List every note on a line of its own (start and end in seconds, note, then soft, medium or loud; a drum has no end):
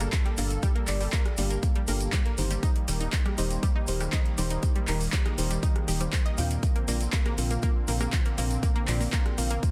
0.00 0.35 G2 medium
0.00 2.59 G3 medium
0.00 0.35 A#3 medium
0.00 9.71 A#3 medium
0.00 0.07 A#3 medium
0.00 0.35 D4 medium
0.00 0.35 G4 medium
0.00 0.35 A4 medium
0.00 2.59 A4 medium
0.00 0.07 A#4 medium
0.00 0.35 F5 medium
0.00 cross-stick medium
0.00 closed hi-hat medium
0.00 shaker medium
0.13 kick loud
0.13 clap loud
0.13 closed hi-hat medium
0.13 shaker soft
0.25 0.29 G3 medium
0.25 0.29 G4 medium
0.25 closed hi-hat soft
0.38 0.58 G1 medium
0.38 0.85 G2 medium
0.38 0.85 A#3 medium
0.38 0.44 A#3 medium
0.38 0.85 D4 medium
0.38 0.85 G4 medium
0.38 0.85 A4 medium
0.38 0.44 A#4 medium
0.38 0.85 F5 loud
0.38 open hi-hat loud
0.38 shaker loud
0.50 closed hi-hat soft
0.50 shaker soft
0.63 0.67 G3 medium
0.63 0.67 G4 medium
0.63 kick loud
0.63 closed hi-hat medium
0.63 shaker soft
0.75 0.82 A#3 medium
0.75 0.82 A#4 medium
0.75 closed hi-hat soft
0.87 1.08 G1 loud
0.87 1.02 G2 medium
0.87 1.02 A#3 medium
0.87 1.02 D4 medium
0.87 1.02 G4 medium
0.87 1.02 A4 medium
0.87 1.02 D5 medium
0.87 clap medium
0.87 open hi-hat loud
0.87 shaker medium
1.01 1.04 G3 medium
1.01 1.04 G4 medium
1.01 open hi-hat medium
1.01 shaker soft
1.13 1.19 A#3 medium
1.13 1.19 A#4 medium
1.13 kick loud
1.13 clap loud
1.13 closed hi-hat medium
1.13 shaker soft
1.26 cross-stick medium
1.26 closed hi-hat soft
1.38 1.58 G1 medium
1.38 1.85 G2 loud
1.38 1.42 G3 medium
1.38 1.85 A#3 medium
1.38 1.85 D4 medium
1.38 1.85 G4 medium
1.38 1.42 G4 medium
1.38 1.85 A4 medium
1.38 1.85 F5 loud
1.38 open hi-hat loud
1.38 shaker loud
1.50 1.57 A#3 medium
1.50 1.57 A#4 medium
1.50 closed hi-hat medium
1.50 shaker soft
1.63 kick loud
1.63 closed hi-hat medium
1.63 shaker soft
1.75 1.79 G3 medium
1.75 1.79 G4 medium
1.75 closed hi-hat soft
1.88 2.08 G1 medium
1.88 2.35 G2 medium
1.88 2.35 A#3 medium
1.88 1.94 A#3 medium
1.88 2.35 D4 medium
1.88 2.35 G4 medium
1.88 2.35 A4 medium
1.88 1.94 A#4 medium
1.88 2.35 F5 medium
1.88 open hi-hat loud
1.88 shaker medium
2.01 closed hi-hat medium
2.01 shaker medium
2.13 2.17 G3 medium
2.13 2.17 G4 medium
2.13 kick loud
2.13 clap loud
2.13 closed hi-hat medium
2.13 shaker soft
2.26 2.32 A#3 medium
2.26 2.32 A#4 medium
2.26 closed hi-hat soft
2.38 2.58 G1 medium
2.38 2.85 D#3 medium
2.38 2.85 D#4 medium
2.38 2.85 G4 medium
2.38 2.85 C5 loud
2.38 open hi-hat loud
2.38 shaker medium
2.51 2.54 G3 medium
2.51 2.54 G4 medium
2.51 closed hi-hat medium
2.51 shaker medium
2.63 6.59 D#3 medium
2.63 6.59 G3 medium
2.63 2.69 D#4 medium
2.63 2.69 D#5 medium
2.63 kick loud
2.63 closed hi-hat medium
2.63 shaker soft
2.76 closed hi-hat soft
2.88 3.08 D#1 loud
2.88 3.02 D#3 medium
2.88 2.92 G3 medium
2.88 3.02 D#4 medium
2.88 3.02 G4 medium
2.88 2.92 G4 medium
2.88 3.02 A#4 medium
2.88 open hi-hat loud
2.88 shaker loud
3.00 3.07 D#4 medium
3.00 3.07 D#5 medium
3.00 closed hi-hat medium
3.00 shaker medium
3.13 kick loud
3.13 clap loud
3.13 closed hi-hat medium
3.13 shaker soft
3.26 3.29 G3 medium
3.26 3.29 G4 medium
3.26 cross-stick medium
3.26 closed hi-hat soft
3.38 3.58 D#1 medium
3.38 3.85 D#3 loud
3.38 3.85 D#4 medium
3.38 3.44 D#4 medium
3.38 3.85 G4 medium
3.38 3.85 C5 loud
3.38 3.44 D#5 medium
3.38 open hi-hat loud
3.38 shaker medium
3.51 closed hi-hat medium
3.51 shaker medium
3.63 3.67 G3 medium
3.63 3.67 G4 medium
3.63 kick loud
3.63 closed hi-hat medium
3.63 shaker soft
3.76 3.82 D#4 medium
3.76 3.82 D#5 medium
3.87 4.08 D#1 medium
3.87 4.35 D#3 medium
3.87 4.35 D#4 medium
3.87 4.35 G4 medium
3.87 4.35 C5 medium
3.87 open hi-hat loud
3.87 shaker medium
4.01 4.04 G3 medium
4.01 4.04 G4 medium
4.01 cross-stick medium
4.01 closed hi-hat medium
4.01 shaker soft
4.12 4.19 D#4 medium
4.12 4.19 D#5 medium
4.12 kick loud
4.12 clap loud
4.12 closed hi-hat medium
4.12 shaker soft
4.25 closed hi-hat soft
4.38 4.58 D#1 medium
4.38 4.85 D#3 medium
4.38 4.42 G3 medium
4.38 4.85 D#4 medium
4.38 4.85 G4 medium
4.38 4.42 G4 medium
4.38 4.85 C5 loud
4.38 open hi-hat loud
4.38 shaker medium
4.50 4.57 D#4 medium
4.50 4.57 D#5 medium
4.50 closed hi-hat medium
4.50 shaker soft
4.63 kick loud
4.63 closed hi-hat medium
4.63 shaker soft
4.76 4.79 G3 medium
4.76 4.79 G4 medium
4.76 closed hi-hat soft
4.88 5.08 D#1 loud
4.88 5.02 D#3 medium
4.88 5.02 D#4 medium
4.88 4.95 D#4 medium
4.88 5.02 G4 medium
4.88 5.02 A#4 medium
4.88 4.95 D#5 medium
4.88 clap medium
4.88 open hi-hat loud
4.88 shaker medium
5.00 open hi-hat medium
5.00 shaker medium
5.13 5.17 G3 medium
5.13 5.17 G4 medium
5.13 kick loud
5.13 clap loud
5.13 closed hi-hat medium
5.13 shaker soft
5.26 5.32 D#4 medium
5.26 5.32 D#5 medium
5.26 cross-stick medium
5.26 closed hi-hat soft
5.38 5.58 D#1 medium
5.38 5.85 D#3 loud
5.38 5.85 D#4 medium
5.38 5.85 G4 medium
5.38 5.85 C5 loud
5.38 open hi-hat loud
5.38 shaker medium
5.51 5.54 G3 medium
5.51 5.54 G4 medium
5.51 closed hi-hat medium
5.51 shaker medium
5.63 5.69 D#4 medium
5.63 5.69 D#5 medium
5.63 kick loud
5.63 closed hi-hat medium
5.63 shaker soft
5.76 cross-stick medium
5.76 closed hi-hat soft
5.88 6.08 D#1 medium
5.88 5.99 D#3 medium
5.88 5.99 D#4 medium
5.88 5.99 G4 medium
5.88 5.92 G4 medium
5.88 5.99 D#5 medium
5.88 5.92 G5 medium
5.88 open hi-hat loud
5.88 shaker medium
6.00 6.35 D#3 medium
6.00 6.07 G3 medium
6.00 6.35 D#4 medium
6.00 6.35 G4 medium
6.00 6.07 G4 medium
6.00 6.35 C5 medium
6.00 closed hi-hat medium
6.00 shaker medium
6.13 kick loud
6.13 clap loud
6.13 closed hi-hat medium
6.13 shaker soft
6.26 6.35 D#5 loud
6.26 6.35 D#6 medium
6.26 closed hi-hat soft
6.38 6.58 D#2 medium
6.38 6.85 A#2 medium
6.38 6.85 C4 medium
6.38 6.85 D4 medium
6.38 6.85 F4 medium
6.38 6.85 A#4 medium
6.38 6.85 F5 medium
6.38 6.45 G5 medium
6.38 6.45 G6 medium
6.38 open hi-hat loud
6.38 shaker medium
6.51 closed hi-hat medium
6.51 shaker soft
6.63 9.71 D3 medium
6.63 9.71 C4 loud
6.63 kick loud
6.63 closed hi-hat medium
6.63 shaker soft
6.76 6.79 A#3 medium
6.76 6.79 A#4 medium
6.76 closed hi-hat soft
6.88 7.08 A#1 loud
6.88 7.02 A#2 medium
6.88 6.95 A#3 loud
6.88 7.02 C4 medium
6.88 7.02 D4 medium
6.88 7.02 F4 medium
6.88 7.02 A#4 medium
6.88 6.94 A#4 medium
6.88 7.02 D5 medium
6.88 open hi-hat loud
6.88 shaker medium
7.01 closed hi-hat medium
7.01 shaker medium
7.13 7.17 A#3 medium
7.13 7.17 A#4 medium
7.13 kick loud
7.13 clap loud
7.13 closed hi-hat medium
7.13 shaker soft
7.26 7.32 A#3 loud
7.26 7.32 A#4 medium
7.26 cross-stick medium
7.26 closed hi-hat soft
7.38 7.58 A#1 medium
7.38 7.85 A#2 loud
7.38 7.85 C4 medium
7.38 7.85 D4 medium
7.38 7.85 F4 medium
7.38 7.85 A#4 medium
7.38 7.85 F5 loud
7.38 open hi-hat loud
7.38 shaker loud
7.51 7.54 A#3 medium
7.51 7.54 A#4 medium
7.51 closed hi-hat medium
7.51 shaker medium
7.62 7.70 A#3 loud
7.62 7.69 A#4 medium
7.62 kick loud
7.62 closed hi-hat medium
7.62 shaker soft
7.88 8.08 A#1 medium
7.88 8.35 A#2 medium
7.88 7.92 A#3 medium
7.88 8.35 C4 medium
7.88 8.35 D4 medium
7.88 8.35 F4 medium
7.88 8.35 A#4 medium
7.88 7.92 A#4 medium
7.88 8.35 F5 medium
7.88 open hi-hat loud
7.88 shaker medium
8.00 8.07 A#3 loud
8.00 8.07 A#4 medium
8.00 cross-stick medium
8.00 closed hi-hat medium
8.00 shaker soft
8.13 kick loud
8.13 clap loud
8.13 closed hi-hat medium
8.13 shaker soft
8.26 8.29 A#3 medium
8.26 8.29 A#4 medium
8.26 closed hi-hat soft
8.38 8.58 A#1 medium
8.38 8.85 A#2 loud
8.38 8.45 A#3 loud
8.38 8.85 C4 medium
8.38 8.85 D4 medium
8.38 8.85 F4 medium
8.38 8.85 A#4 medium
8.38 8.44 A#4 medium
8.38 8.85 F5 loud
8.38 open hi-hat loud
8.38 shaker medium
8.51 closed hi-hat medium
8.51 shaker soft
8.63 8.67 A#3 medium
8.63 8.67 A#4 medium
8.63 kick loud
8.63 closed hi-hat medium
8.63 shaker soft
8.76 8.82 A#3 loud
8.76 8.82 A#4 medium
8.76 closed hi-hat soft
8.88 9.08 A#1 loud
8.88 9.02 A#2 medium
8.88 9.02 C4 medium
8.88 9.02 D4 medium
8.88 9.02 F4 medium
8.88 9.02 A#4 medium
8.88 9.02 D5 medium
8.88 clap medium
8.88 open hi-hat loud
8.88 shaker medium
9.01 9.04 A#3 medium
9.01 9.04 A#4 medium
9.01 open hi-hat medium
9.01 shaker medium
9.13 9.19 A#3 loud
9.13 9.19 A#4 medium
9.13 kick loud
9.13 clap loud
9.13 closed hi-hat medium
9.13 shaker soft
9.26 cross-stick medium
9.26 closed hi-hat soft
9.38 9.58 A#1 medium
9.38 9.71 A#2 loud
9.38 9.42 A#3 medium
9.38 9.71 C4 medium
9.38 9.71 D4 medium
9.38 9.71 F4 medium
9.38 9.71 A#4 medium
9.38 9.42 A#4 medium
9.38 9.71 F5 loud
9.38 open hi-hat loud
9.38 shaker loud
9.50 9.57 A#3 loud
9.50 9.57 A#4 medium
9.50 closed hi-hat medium
9.50 shaker medium
9.63 kick loud
9.63 closed hi-hat medium
9.63 shaker soft